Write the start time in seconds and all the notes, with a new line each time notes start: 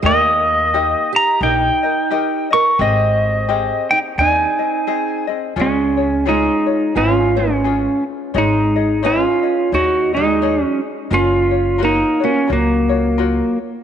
0.02 D#2 A#3 D#4 G4 A#4 D#5
0.74 D#4 G4 A#4 D#5
1.13 G4 A#5
1.41 A#1 D#4 G4 A#4 D#5 G5
1.83 D#4 A#4 D#5
2.11 D#4 G4 A#4 D#5
2.51 D#4 A#4 D#5 C#6
2.79 G#1 C4 G4 G#4 D#5
3.49 C4 G4 G#4 D#5
3.91 D#4 G5
4.18 D#2 C4 D#4 G#4 D#5 G#5
4.59 C4 G#4 D#5
4.87 C4 G#4 D#5
5.27 C4 G#4 D#5
5.56 C#2 G#3 C#4 F4 G#4 C#5
5.61 C#4
5.97 C#4 F4 C#5
6.26 G#3 C#4 D#4 F4 G#4 C#5
6.66 C#4 F4 C#5
6.95 G#1 C#4 F4 G#4 C#5
7.36 G#3 C#4 F4 C#5
7.64 C#4 F4 G#4 C#5
8.34 G#1 G#3 D#4 G#4 C#5 D#5
8.38 D#4
8.76 D#4 G#4 D#5
9.03 C#4 D#4 F4 G#4 C#5 D#5
9.43 D#4 G#4 D#5
9.72 D#2 D#4 F#4 G#4 C#5 D#5
10.13 G#3 D#4 G#4 D#5
10.42 D#4 G#4 C#5 D#5
10.63 F#3 C#4
11.10 F#1 C#4 F4 A#4 C#5
11.51 F4 C#5
11.78 F4 F#4 A#4 C#5
11.82 A#3 D#4
12.20 A#3 F4 F#4 C#5
12.25 C#4
12.47 C#2 F4 F#4 A#4 C#5
12.53 F#3 A#3
12.89 F4 F#4 C#5
13.18 F4 F#4 A#4 C#5